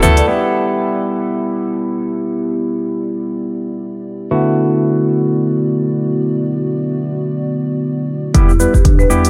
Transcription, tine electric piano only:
0.03 0.25 A3 loud
0.03 0.25 B3 medium
0.03 0.25 E4 medium
0.03 0.25 A4 loud
0.28 4.29 G3 medium
0.28 4.29 B3 medium
0.28 4.29 E4 medium
0.28 4.29 G4 medium
4.31 8.32 D3 medium
4.31 8.32 A3 medium
4.31 8.32 B3 medium
4.31 8.32 E4 medium
4.31 8.32 F#4 medium
8.34 8.51 G3 medium
8.34 8.51 B3 medium
8.34 8.51 E4 medium
8.34 8.51 G4 loud
8.60 8.76 G3 medium
8.60 8.76 B3 medium
8.60 8.76 E4 medium
8.60 8.76 B4 medium
9.10 9.30 G3 medium
9.10 9.30 B3 medium
9.10 9.30 E4 medium
9.10 9.30 G4 loud

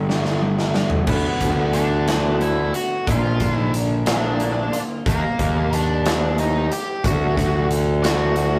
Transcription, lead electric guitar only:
1.09 1.71 B3 medium
1.09 1.74 B4 medium
1.74 2.38 D4 medium
1.74 2.37 D5 medium
2.41 2.72 E4 medium
2.41 2.75 E5 medium
2.75 3.06 F#4 medium
2.75 3.09 F#5 medium
3.10 3.71 F4 medium
3.10 3.53 F5 medium
3.53 3.71 E5 medium
4.08 4.78 D4 medium
4.08 4.80 D5 medium
5.08 5.69 A#3 medium
5.08 5.76 A#4 medium
5.74 6.35 D4 medium
5.74 6.35 D5 medium
6.39 6.70 D#4 medium
6.39 6.73 D#5 medium
6.72 7.03 G4 medium
6.72 7.04 G5 medium
7.05 7.67 F#4 medium
7.05 7.67 F#5 medium
8.04 8.59 F#4 medium
8.04 8.59 F#5 loud

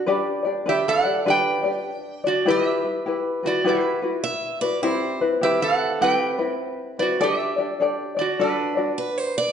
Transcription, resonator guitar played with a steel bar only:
0.69 0.85 G4 medium
0.69 0.86 E5 medium
0.88 1.24 A4 medium
0.88 1.28 F#5 loud
1.28 2.20 B4 medium
1.28 2.28 G5 loud
2.27 2.45 F#4 medium
2.27 2.45 D5 medium
2.48 3.40 G4 medium
2.48 2.67 D#5 medium
2.67 3.48 E5 medium
3.46 3.64 F#4 medium
3.46 3.66 D5 medium
3.68 4.21 E4 medium
3.68 4.21 B4 medium
5.43 5.60 G4 medium
5.43 5.62 E5 loud
5.62 6.00 A4 medium
5.62 6.01 F#5 medium
6.02 6.96 B4 medium
6.02 7.02 G5 loud
6.99 7.20 F#4 medium
6.99 7.21 D5 medium
7.21 8.15 G4 medium
7.21 7.38 D#5 medium
7.38 8.21 E5 medium
8.19 8.39 F#4 medium
8.19 8.40 D5 medium
8.41 8.97 D4 medium
8.41 8.95 B4 medium

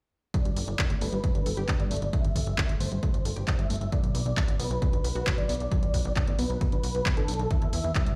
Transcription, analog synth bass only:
0.45 0.53 G1 medium
0.56 0.64 G1 loud
0.68 0.75 G1 medium
0.90 0.97 D1 medium
1.01 1.09 G1 medium
1.12 1.20 G1 medium
1.35 1.42 G1 medium
1.46 1.53 G1 medium
1.57 1.65 G1 medium
1.80 1.87 G1 medium
1.91 1.98 G1 medium
2.02 2.09 G1 medium
2.25 2.32 G1 medium
2.36 2.43 G1 loud
2.47 2.54 G1 medium
2.69 2.77 D1 medium
2.80 2.88 G1 medium
2.92 2.99 G1 medium
3.14 3.21 G1 medium
3.25 3.32 G1 medium
3.36 3.44 G1 medium
3.59 3.66 G1 medium
3.70 3.77 G1 medium
3.81 3.88 G1 medium
4.03 4.11 B1 medium
4.15 4.22 B1 loud
4.26 4.33 B1 medium
4.48 4.56 A1 medium
4.59 4.67 B1 medium
4.71 4.78 B1 medium
4.93 5.00 B1 medium
5.04 5.12 B1 medium
5.15 5.23 B1 medium
5.38 5.45 B1 medium
5.49 5.56 B1 loud
5.60 5.68 B1 medium
5.83 5.90 B1 medium
5.94 6.01 B1 medium
6.05 6.12 B1 medium
6.28 6.35 A1 medium
6.39 6.46 B1 medium
6.50 6.57 B1 medium
6.72 6.80 B1 medium
6.84 6.91 B1 medium
6.95 7.02 B1 medium
7.17 7.24 A1 medium
7.28 7.36 B1 medium
7.39 7.47 B1 medium
7.62 7.69 E2 medium
7.73 7.80 E2 loud
7.84 7.92 E2 medium
8.07 8.14 D2 medium

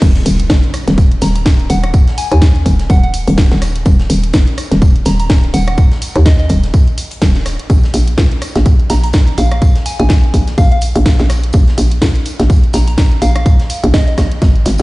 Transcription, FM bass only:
0.02 0.24 D#1 loud
0.26 0.48 D#1 loud
0.50 0.61 F#1 loud
0.88 1.20 D#1 loud
1.22 1.68 D#1 loud
1.70 2.05 D#1 loud
2.32 2.64 D#2 medium
2.66 2.88 D#1 loud
2.90 3.25 D#1 loud
3.28 3.49 D#1 loud
3.52 3.84 D#1 loud
3.86 4.08 D#1 loud
4.10 4.32 D#1 loud
4.34 4.45 F#1 medium
4.72 5.04 D#1 medium
5.06 5.52 D#1 loud
5.54 5.89 D#1 medium
6.16 6.48 D#2 loud
6.50 6.72 D#1 loud
7.22 7.57 D#1 loud
7.70 7.92 A#1 loud
7.94 8.16 A#1 loud
8.18 8.29 C#2 medium
8.56 8.88 A#1 loud
8.90 9.36 A#1 loud
9.38 9.73 A#1 loud
10.00 10.32 A#1 loud
10.34 10.56 A#1 loud
10.58 10.93 A#1 loud
10.96 11.17 A#1 loud
11.20 11.52 A#1 loud
11.54 11.76 A#1 loud
11.78 12.00 A#1 loud
12.02 12.13 C#2 medium
12.40 12.72 A#1 loud
12.74 13.20 A#1 loud
13.22 13.57 A#1 loud
13.84 14.16 A#1 loud
14.18 14.40 A#1 loud
14.42 14.64 G#1 loud
14.66 14.77 G#1 loud

